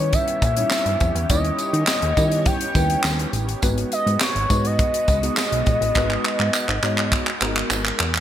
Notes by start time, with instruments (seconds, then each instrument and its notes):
Already playing: analog synth bass D#3, analog synth pad D#3 B3 C#4 G4 C#5, tine electric piano G3 C#4 D#4 E4 B4, analog synth lead C#5
0.13 analog synth lead E5, kick, closed hi-hat, tambourine
0.28 closed hi-hat
0.42 analog synth bass A#2, analog synth lead E5, kick, closed hi-hat, tambourine
0.57 tine electric piano G3 C#4 D#4 E4 C#5, closed hi-hat
0.70 snare, clap, tambourine
0.86 analog synth bass G2, closed hi-hat
1.00 analog synth bass F2, kick, closed hi-hat, tambourine
1.15 analog synth bass E2, closed hi-hat
1.30 analog synth bass D#2, tine electric piano G3 C#4 D#4 E4 C#5, analog synth pad C#5, analog synth lead D#5, kick, closed hi-hat, tambourine
1.45 closed hi-hat
1.59 closed hi-hat, tambourine
1.73 analog synth bass D#3, closed hi-hat
1.87 snare, clap, tambourine
2.02 analog synth bass D#2, closed hi-hat
2.17 analog synth bass D#3, tine electric piano G3 C#4 D#4 E4 G4, kick, closed hi-hat, tambourine
2.31 closed hi-hat
2.46 analog synth lead G5, kick, closed hi-hat, tambourine
2.61 closed hi-hat
2.75 analog synth bass D#2, tine electric piano G3 C#4 D#4 E4 B4, kick, closed hi-hat, tambourine
2.90 closed hi-hat
3.04 analog synth bass D#2, snare, clap, tambourine
3.19 closed hi-hat
3.33 analog synth bass A1, closed hi-hat, tambourine
3.49 closed hi-hat
3.62 analog synth bass G#1, tine electric piano G#3 B3 D#4 F#4 B4, analog synth pad G#3 B3 F#4, kick, closed hi-hat, tambourine
3.78 closed hi-hat
3.92 analog synth lead D#5, closed hi-hat, tambourine
4.06 analog synth bass G#2, closed hi-hat
4.20 analog synth lead C#5, snare, clap, tambourine
4.35 analog synth bass G#1, closed hi-hat
4.50 analog synth bass G#2, tine electric piano G#3 B3 D#4 F#4 B4, kick, closed hi-hat, tambourine
4.65 analog synth lead D#5, closed hi-hat
4.79 kick, closed hi-hat
4.94 closed hi-hat
5.08 analog synth bass C#2, kick, closed hi-hat, tambourine
5.23 tine electric piano G#3 B3 D#4 F#4 G#4, closed hi-hat
5.37 snare, clap, tambourine
5.52 analog synth bass B1, closed hi-hat
5.66 analog synth bass A#1, kick, closed hi-hat, tambourine
5.81 analog synth bass A1, closed hi-hat
5.95 analog synth bass G#1, tine electric piano G#3 B3 D#4 F#4 B4, kick, clap, tambourine
6.11 clap
6.24 clap, tambourine
6.39 analog synth bass G#2, clap
6.54 clap, tambourine
6.68 analog synth bass G#1, clap
6.83 analog synth bass G#2, tine electric piano G#3 B3 D#4 F#4 C#5, clap, tambourine
6.98 clap
7.12 kick, clap, tambourine
7.27 clap
7.41 analog synth bass G#1, tine electric piano G#3 B3 D#4 F#4 A#4, clap, tambourine
7.56 clap
7.70 analog synth bass G#1, clap, tambourine
7.85 clap
8.00 analog synth bass E2, clap, tambourine
8.14 clap